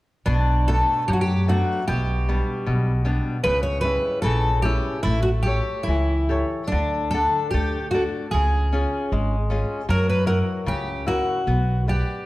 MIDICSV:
0, 0, Header, 1, 4, 480
1, 0, Start_track
1, 0, Key_signature, 2, "minor"
1, 0, Tempo, 828729
1, 150, Time_signature, 2, 2, 24, 8
1, 627, Tempo, 791557
1, 3027, Tempo, 829876
1, 4467, Tempo, 784314
1, 6387, Tempo, 810811
1, 7329, End_track
2, 0, Start_track
2, 0, Title_t, "Twelve-string acoustic guitar"
2, 0, Program_c, 0, 25
2, 149, Note_on_c, 0, 62, 73
2, 393, Note_on_c, 0, 69, 78
2, 398, Note_off_c, 0, 62, 0
2, 622, Note_off_c, 0, 69, 0
2, 625, Note_on_c, 0, 67, 73
2, 654, Note_off_c, 0, 67, 0
2, 656, Note_on_c, 0, 66, 58
2, 703, Note_off_c, 0, 66, 0
2, 705, Note_on_c, 0, 67, 72
2, 873, Note_off_c, 0, 67, 0
2, 876, Note_on_c, 0, 66, 69
2, 1105, Note_off_c, 0, 66, 0
2, 1108, Note_on_c, 0, 67, 74
2, 1800, Note_off_c, 0, 67, 0
2, 2054, Note_on_c, 0, 71, 88
2, 2168, Note_off_c, 0, 71, 0
2, 2171, Note_on_c, 0, 73, 76
2, 2278, Note_off_c, 0, 73, 0
2, 2280, Note_on_c, 0, 71, 87
2, 2527, Note_off_c, 0, 71, 0
2, 2529, Note_on_c, 0, 69, 81
2, 2771, Note_off_c, 0, 69, 0
2, 2774, Note_on_c, 0, 67, 76
2, 3007, Note_off_c, 0, 67, 0
2, 3020, Note_on_c, 0, 64, 82
2, 3132, Note_off_c, 0, 64, 0
2, 3134, Note_on_c, 0, 66, 66
2, 3168, Note_off_c, 0, 66, 0
2, 3250, Note_on_c, 0, 67, 72
2, 3485, Note_on_c, 0, 64, 67
2, 3506, Note_off_c, 0, 67, 0
2, 3837, Note_off_c, 0, 64, 0
2, 3973, Note_on_c, 0, 62, 67
2, 4222, Note_on_c, 0, 69, 71
2, 4230, Note_off_c, 0, 62, 0
2, 4451, Note_off_c, 0, 69, 0
2, 4453, Note_on_c, 0, 67, 65
2, 4697, Note_off_c, 0, 67, 0
2, 4699, Note_on_c, 0, 66, 66
2, 4766, Note_off_c, 0, 66, 0
2, 4945, Note_on_c, 0, 68, 70
2, 5642, Note_off_c, 0, 68, 0
2, 5919, Note_on_c, 0, 70, 88
2, 6035, Note_off_c, 0, 70, 0
2, 6037, Note_on_c, 0, 71, 76
2, 6141, Note_off_c, 0, 71, 0
2, 6144, Note_on_c, 0, 70, 79
2, 6209, Note_off_c, 0, 70, 0
2, 6396, Note_on_c, 0, 67, 72
2, 6611, Note_off_c, 0, 67, 0
2, 6630, Note_on_c, 0, 66, 74
2, 7080, Note_off_c, 0, 66, 0
2, 7112, Note_on_c, 0, 67, 64
2, 7329, Note_off_c, 0, 67, 0
2, 7329, End_track
3, 0, Start_track
3, 0, Title_t, "Nylon-string guitar"
3, 0, Program_c, 1, 24
3, 149, Note_on_c, 1, 47, 55
3, 392, Note_on_c, 1, 57, 39
3, 395, Note_on_c, 1, 59, 36
3, 398, Note_on_c, 1, 62, 41
3, 613, Note_off_c, 1, 47, 0
3, 625, Note_on_c, 1, 54, 53
3, 773, Note_off_c, 1, 57, 0
3, 774, Note_off_c, 1, 59, 0
3, 776, Note_off_c, 1, 62, 0
3, 867, Note_on_c, 1, 57, 39
3, 871, Note_on_c, 1, 59, 37
3, 872, Note_on_c, 1, 62, 45
3, 1062, Note_off_c, 1, 57, 0
3, 1063, Note_off_c, 1, 59, 0
3, 1064, Note_off_c, 1, 62, 0
3, 1096, Note_off_c, 1, 54, 0
3, 1110, Note_on_c, 1, 47, 55
3, 1357, Note_on_c, 1, 55, 42
3, 1360, Note_on_c, 1, 59, 36
3, 1361, Note_on_c, 1, 62, 42
3, 1574, Note_off_c, 1, 47, 0
3, 1586, Note_on_c, 1, 47, 55
3, 1735, Note_off_c, 1, 55, 0
3, 1736, Note_off_c, 1, 59, 0
3, 1737, Note_off_c, 1, 62, 0
3, 1819, Note_on_c, 1, 55, 43
3, 1822, Note_on_c, 1, 59, 40
3, 1825, Note_on_c, 1, 62, 45
3, 2011, Note_off_c, 1, 55, 0
3, 2012, Note_off_c, 1, 59, 0
3, 2012, Note_off_c, 1, 62, 0
3, 2046, Note_off_c, 1, 47, 0
3, 2056, Note_on_c, 1, 49, 58
3, 2294, Note_on_c, 1, 55, 42
3, 2298, Note_on_c, 1, 61, 39
3, 2300, Note_on_c, 1, 64, 46
3, 2522, Note_off_c, 1, 49, 0
3, 2540, Note_on_c, 1, 49, 57
3, 2684, Note_off_c, 1, 55, 0
3, 2685, Note_off_c, 1, 61, 0
3, 2687, Note_off_c, 1, 64, 0
3, 2783, Note_on_c, 1, 55, 45
3, 2788, Note_on_c, 1, 61, 40
3, 2790, Note_on_c, 1, 64, 48
3, 2980, Note_off_c, 1, 55, 0
3, 2983, Note_off_c, 1, 61, 0
3, 2983, Note_off_c, 1, 64, 0
3, 3015, Note_off_c, 1, 49, 0
3, 3029, Note_on_c, 1, 57, 56
3, 3267, Note_on_c, 1, 67, 39
3, 3270, Note_on_c, 1, 69, 37
3, 3276, Note_on_c, 1, 73, 43
3, 3493, Note_off_c, 1, 57, 0
3, 3517, Note_on_c, 1, 52, 49
3, 3654, Note_off_c, 1, 67, 0
3, 3655, Note_off_c, 1, 69, 0
3, 3659, Note_off_c, 1, 73, 0
3, 3750, Note_on_c, 1, 67, 38
3, 3754, Note_on_c, 1, 69, 34
3, 3760, Note_on_c, 1, 73, 42
3, 3944, Note_off_c, 1, 67, 0
3, 3946, Note_off_c, 1, 69, 0
3, 3950, Note_off_c, 1, 73, 0
3, 3983, Note_off_c, 1, 52, 0
3, 3998, Note_on_c, 1, 50, 53
3, 4241, Note_on_c, 1, 62, 38
3, 4243, Note_on_c, 1, 78, 35
3, 4244, Note_on_c, 1, 69, 39
3, 4456, Note_off_c, 1, 50, 0
3, 4473, Note_on_c, 1, 57, 54
3, 4619, Note_off_c, 1, 62, 0
3, 4620, Note_off_c, 1, 78, 0
3, 4621, Note_off_c, 1, 69, 0
3, 4719, Note_on_c, 1, 62, 41
3, 4722, Note_on_c, 1, 66, 38
3, 4725, Note_on_c, 1, 69, 45
3, 4910, Note_off_c, 1, 62, 0
3, 4913, Note_off_c, 1, 66, 0
3, 4913, Note_off_c, 1, 69, 0
3, 4943, Note_off_c, 1, 57, 0
3, 4963, Note_on_c, 1, 49, 59
3, 5199, Note_on_c, 1, 61, 41
3, 5204, Note_on_c, 1, 65, 36
3, 5208, Note_on_c, 1, 68, 43
3, 5424, Note_off_c, 1, 49, 0
3, 5443, Note_on_c, 1, 56, 55
3, 5578, Note_off_c, 1, 61, 0
3, 5582, Note_off_c, 1, 65, 0
3, 5583, Note_off_c, 1, 68, 0
3, 5672, Note_on_c, 1, 61, 43
3, 5678, Note_on_c, 1, 65, 37
3, 5681, Note_on_c, 1, 68, 46
3, 5861, Note_off_c, 1, 61, 0
3, 5864, Note_off_c, 1, 65, 0
3, 5865, Note_off_c, 1, 68, 0
3, 5898, Note_off_c, 1, 56, 0
3, 5909, Note_on_c, 1, 54, 59
3, 6138, Note_on_c, 1, 64, 41
3, 6143, Note_on_c, 1, 70, 47
3, 6143, Note_on_c, 1, 78, 39
3, 6373, Note_off_c, 1, 54, 0
3, 6385, Note_on_c, 1, 49, 54
3, 6525, Note_off_c, 1, 64, 0
3, 6528, Note_off_c, 1, 70, 0
3, 6528, Note_off_c, 1, 78, 0
3, 6622, Note_on_c, 1, 64, 45
3, 6628, Note_on_c, 1, 66, 40
3, 6629, Note_on_c, 1, 70, 47
3, 6812, Note_off_c, 1, 64, 0
3, 6815, Note_off_c, 1, 66, 0
3, 6816, Note_off_c, 1, 70, 0
3, 6845, Note_off_c, 1, 49, 0
3, 6864, Note_on_c, 1, 59, 57
3, 7102, Note_on_c, 1, 71, 34
3, 7104, Note_off_c, 1, 59, 0
3, 7105, Note_on_c, 1, 78, 39
3, 7107, Note_on_c, 1, 74, 44
3, 7329, Note_off_c, 1, 71, 0
3, 7329, Note_off_c, 1, 74, 0
3, 7329, Note_off_c, 1, 78, 0
3, 7329, End_track
4, 0, Start_track
4, 0, Title_t, "Upright bass"
4, 0, Program_c, 2, 32
4, 155, Note_on_c, 2, 35, 75
4, 464, Note_off_c, 2, 35, 0
4, 629, Note_on_c, 2, 42, 66
4, 943, Note_off_c, 2, 42, 0
4, 1114, Note_on_c, 2, 35, 76
4, 1423, Note_off_c, 2, 35, 0
4, 1592, Note_on_c, 2, 35, 63
4, 1898, Note_off_c, 2, 35, 0
4, 2067, Note_on_c, 2, 37, 75
4, 2375, Note_off_c, 2, 37, 0
4, 2542, Note_on_c, 2, 34, 70
4, 2859, Note_off_c, 2, 34, 0
4, 3035, Note_on_c, 2, 33, 80
4, 3344, Note_off_c, 2, 33, 0
4, 3510, Note_on_c, 2, 37, 65
4, 3824, Note_off_c, 2, 37, 0
4, 3997, Note_on_c, 2, 38, 75
4, 4304, Note_off_c, 2, 38, 0
4, 4470, Note_on_c, 2, 38, 68
4, 4786, Note_off_c, 2, 38, 0
4, 4959, Note_on_c, 2, 37, 77
4, 5269, Note_off_c, 2, 37, 0
4, 5439, Note_on_c, 2, 32, 67
4, 5745, Note_off_c, 2, 32, 0
4, 5910, Note_on_c, 2, 42, 77
4, 6221, Note_off_c, 2, 42, 0
4, 6387, Note_on_c, 2, 37, 73
4, 6694, Note_off_c, 2, 37, 0
4, 6862, Note_on_c, 2, 35, 80
4, 7179, Note_off_c, 2, 35, 0
4, 7329, End_track
0, 0, End_of_file